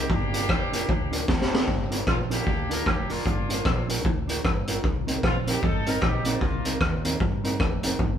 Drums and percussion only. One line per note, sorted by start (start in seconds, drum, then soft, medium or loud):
0.10 kick loud
0.34 closed hi-hat medium
0.49 kick loud
0.49 cross-stick loud
0.73 closed hi-hat medium
0.89 kick loud
1.13 closed hi-hat medium
1.28 kick loud
1.28 snare medium
1.41 snare medium
1.54 snare loud
1.68 kick medium
1.92 closed hi-hat medium
2.07 kick loud
2.07 cross-stick loud
2.31 closed hi-hat medium
2.47 kick medium
2.71 closed hi-hat medium
2.86 kick loud
2.86 cross-stick medium
3.10 open hi-hat medium
3.26 kick loud
3.26 hi-hat pedal medium
3.50 closed hi-hat medium
3.65 kick loud
3.65 cross-stick loud
3.89 closed hi-hat medium
4.05 kick loud
4.29 closed hi-hat medium
4.45 kick loud
4.45 cross-stick loud
4.68 closed hi-hat medium
4.84 kick loud
5.08 closed hi-hat medium
5.23 kick loud
5.23 cross-stick loud
5.47 closed hi-hat medium
5.63 kick loud
5.86 closed hi-hat medium
6.02 kick loud
6.02 cross-stick loud
6.25 closed hi-hat medium
6.41 kick loud
6.65 closed hi-hat medium
6.81 kick loud
6.81 cross-stick loud
7.05 closed hi-hat medium
7.20 kick loud
7.44 closed hi-hat medium
7.60 kick loud
7.60 cross-stick medium
7.83 closed hi-hat medium
7.99 kick loud